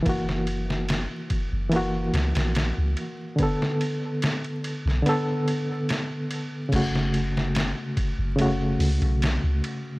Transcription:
<<
  \new Staff \with { instrumentName = "Reed electric piano" } { \time 4/4 \key fis \minor \tempo 4 = 72 <e ais fis'>2 <e ais fis'>2 | <d b a'>2 <d b a'>2 | <cis a fis'>2 <cis a fis'>2 | }
  \new Staff \with { instrumentName = "808-style bass" } { \clef bass \time 4/4 \key fis \minor fis,,4~ fis,,16 r8 fis,,8. cis,16 ais,,8 cis,16 r8 | r4. r16 b,,16 r2 | fis,,4~ fis,,16 r8 fis,,8. cis,16 b,,8 cis,16 r8 | }
  \new DrumStaff \with { instrumentName = "Drums" } \drummode { \time 4/4 <bd cymr>16 sn16 cymr16 sn16 <cymr sn>8 <bd cymr>8 cymr8 <cymr sn>16 <cymr sn>16 <cymr sn>8 cymr8 | <bd cymr>16 sn16 cymr8 <cymr sn>16 cymr16 cymr16 sn16 cymr8 cymr8 <cymr sn>8 cymr8 | <cymc bd cymr>16 sn16 cymr16 sn16 <cymr sn>8 <bd cymr>8 cymr8 hho16 cymr16 <cymr sn>8 cymr8 | }
>>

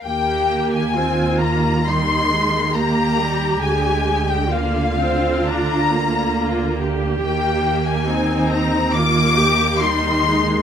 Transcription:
<<
  \new Staff \with { instrumentName = "Violin section" } { \time 4/4 \key ees \major \tempo 4 = 68 g''8. aes''8. bes''8 c'''4 bes''4 | aes''8. g''16 f''4 bes''4. r8 | g''8. aes''8. bes''8 d'''4 c'''4 | }
  \new Staff \with { instrumentName = "Violin section" } { \time 4/4 \key ees \major g''8. aes''8. bes''8 c'''4 bes''4 | aes''8. g''16 f''4 bes''4. r8 | g''8. aes''8. bes''8 d'''4 c'''4 | }
  \new Staff \with { instrumentName = "Viola section" } { \time 4/4 \key ees \major << { g'4 f'4 ees'4 g'4~ | g'4 f'2 f'8 g'8~ | g'4 ees'4 f'8 g'8 ees'4 | } \\ { bes4 c'8 bes8 g8 aes8 bes8 g8 | aes4 bes8 c'8 d'8 bes4. | bes4 c'4 bes4 g8 aes8 | } >> }
  \new Staff \with { instrumentName = "Cello section" } { \clef bass \time 4/4 \key ees \major ees1 | d1 | ees1 | }
  \new Staff \with { instrumentName = "Double bass section" } { \clef bass \time 4/4 \key ees \major ees,1 | d,1 | ees,1 | }
>>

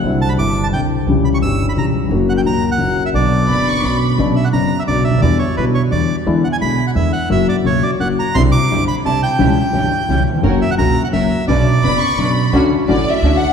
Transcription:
<<
  \new Staff \with { instrumentName = "Violin section" } { \time 3/4 \key b \minor \tempo 4 = 173 r2. | r2. | r2. | r4 b''8 cis'''8 b''4 |
r2. | r2. | r2. | r2. |
r2. | r2. | r2. | r4 b''8 cis'''8 b''4 |
\key d \major r4 \tuplet 3/2 { d''4 e''8~ } e''8 fis''8 | }
  \new Staff \with { instrumentName = "Bandoneon" } { \time 3/4 \key b \minor r8 a''16 b''16 d'''8. a''16 g''8 r8 | r8 b''16 cis'''16 e'''8. b''16 ais''8 r8 | r8 fis''16 g''16 ais''8. fis''4 e''16 | d''2~ d''8 r8 |
r8 e''16 fis''16 ais''8. e''16 d''8 e''8 | d''8 cis''8 b'8 cis''8 d''8. r16 | r8 fis''16 gis''16 b''8. fis''16 e''8 fis''8 | e''8 d''8 cis''8 d''8 fis''8 ais''8 |
c'''8 d'''4 b''8 a''8 g''8~ | g''2~ g''8 r8 | r8 e''16 fis''16 ais''8. fis''16 e''4 | d''2~ d''8 r8 |
\key d \major r2. | }
  \new Staff \with { instrumentName = "String section" } { \time 3/4 \key b \minor r2. | r2. | r2. | r2. |
r2. | r2. | r2. | r2. |
<c' d' e'>8 r8 <c' d' e'>8 r8 <c' d' e'>8 r8 | <cis' e' g'>8 r8 <cis' e' g'>8 r8 <cis' e' g'>8 r8 | <cis' fis' ais'>8 r8 <cis' fis' ais'>8 r8 <cis' fis' ais'>8 r8 | <cis' d' b'>8 r8 <cis' d' b'>8 r8 <cis' d' b'>8 r8 |
\key d \major <cis' d' fis'>8 r8 <cis' d' fis'>8 r8 <cis' d' fis'>8 r8 | }
  \new Staff \with { instrumentName = "Grand piano" } { \clef bass \time 3/4 \key b \minor <c, c d g c' e'>4 <g,, g, d g c' e'>4 <c, c d g c' e'>4 | <cis, cis e g cis' g'>4 <g,, g, e g cis' g'>4 <cis, cis e g cis' g'>4 | <fis, cis fis ais fis'>4 <cis, cis fis ais fis'>4 <fis, cis fis ais fis'>4 | <b,, b, d fis b d'>4 <fis,, fis, d fis b d'>4 <b,, b, fis b cis' d'>4 |
<b,, b, cis fis b d'>8 r8 <fis,, fis, cis fis b d'>8 r8 <b,, b, cis fis b d'>8 r32 cis,32 d,32 dis,32 | <e, d e g b e'>8 r8 <b,, b, d g b e'>8 r8 <e, d e g b e'>8 r8 | <e, d e gis b e'>8 r8 <b,, b, d gis b e'>8 r8 <e, d e gis b e'>8 r8 | <fis, cis fis ais fis'>8 r8 <cis, cis fis ais fis'>8 r8 <fis, cis fis ais fis'>8 r8 |
<c, c d g c' e'>8 r8 <g,, g, d g c' e'>8 r8 <c, c d g c' e'>8 r8 | <cis, cis e g cis' g'>8 r8 <g,, g, e g cis' g'>8 r8 <cis, cis e g cis' g'>8 r32 dis,32 e,32 eis,32 | <fis, cis fis ais fis'>8 r8 <cis, cis fis ais fis'>8 r8 <fis, cis fis ais fis'>8 r8 | <b,, b, cis fis b d'>8 r8 <fis,, fis, cis fis b d'>8 r8 <b,, b, cis fis b d'>8 r8 |
\key d \major <d, d a cis' fis'>8 r8 <a,, a, d a cis' fis'>8 r8 <d, d a cis' fis'>8 r8 | }
  \new Staff \with { instrumentName = "Upright bass" } { \clef bass \time 3/4 \key b \minor c,4 g,,4 c,4 | cis,4 g,,4 cis,4 | fis,,4 cis,4 fis,,4 | b,,4 fis,,4 b,,4 |
b,,16. r8 r32 fis,,16. r8 r32 b,,16. r16 cis,32 d,32 dis,32 | e,16. r8 r32 b,,16. r8 r32 e,16. r8 r32 | e,16. r8 r32 b,,16. r8 r32 e,16. r8 r32 | fis,,16. r8 r32 cis,16. r8 r32 fis,,16. r8 r32 |
c,16. r8 r32 g,,16. r8 r32 c,16. r8 r32 | cis,16. r8 r32 g,,16. r8 r32 cis,16. r8 r32 | fis,,16. r8 r32 cis,16. r8 r32 fis,,16. r8 r32 | b,,16. r8 r32 fis,,16. r8 r32 b,,16. r8 r32 |
\key d \major d,16. r8 r32 a,,16. r8 r32 d,16. r8 r32 | }
>>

